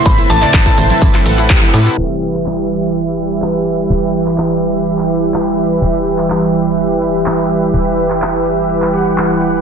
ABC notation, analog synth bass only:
X:1
M:4/4
L:1/8
Q:1/4=125
K:Em
V:1 name="Analog synth bass" clef=bass
A,,, A,,, A,,, A,,, A,,, A,,, E,, A,, | E,,,8 | E,,,8 | E,,,8 |
E,,,8 |]